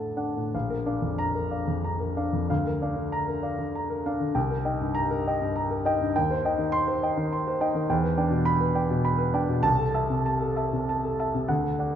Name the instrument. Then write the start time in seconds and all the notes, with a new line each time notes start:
grand piano
Already playing: D2 A2 D4 A4 D5 F#5 A5
0.17 D4 D5 F#5
0.37 A2
0.54 A#1 F5
0.70 A#4
0.86 D4 D5 F5
1.02 F2
1.18 A#5
1.35 A#4
1.51 D5 F5
1.68 F2
1.84 A#5
2.00 A#4
2.17 D4 D5 F5
2.33 F2
2.50 D2 F5
2.67 A#4
2.82 D4 D5 F5
2.96 D3
3.12 A#5
3.28 A#4
3.43 D5 F5
3.58 D3
3.75 A#5
3.90 A#4
4.06 D4 D5 F5
4.20 D3
4.35 C2 G5
4.50 A#4
4.65 D#4 D#5 G5
4.81 G2
4.95 A#5
5.11 A#4
5.27 D#5 G5
5.42 G2
5.56 A#5
5.71 A#4
5.85 D#4 D#5 G5
6.01 G2
6.16 D#2 G5
6.31 C5
6.45 D#4 D#5 G5
6.58 D#3
6.72 C6
6.88 C5
7.03 D#5 G5
7.17 D#3
7.33 C6
7.47 C5
7.61 D#4 D#5 G5
7.75 D#3
7.90 E2 G5
8.04 B4
8.18 D4 D5 G5
8.31 B2
8.45 B5
8.60 B4
8.75 D5 G5
8.90 B2
9.05 B5
9.18 B4
9.34 D4 D5 G5
9.49 B2
9.63 C2 A5
9.79 A4
9.94 E5 A5
10.10 C3
10.26 A5
10.42 A4
10.56 E5 A5
10.73 C3
10.89 A5
11.04 A4
11.20 E5 A5
11.35 C3
11.48 D2 F#5
11.63 A4
11.79 D5 F#5